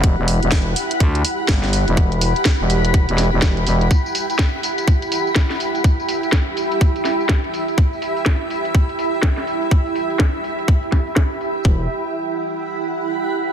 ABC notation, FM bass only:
X:1
M:4/4
L:1/16
Q:"Swing 16ths" 1/4=124
K:Em
V:1 name="FM bass" clef=bass
z E,,,2 E,,,3 z2 D,,2 z2 G,,,3 E,,,- | E,,,3 z2 E,,,4 E,,,2 E,,,3 E,,,2 | z16 | z16 |
z16 | z16 | E,,,2 z12 z2 |]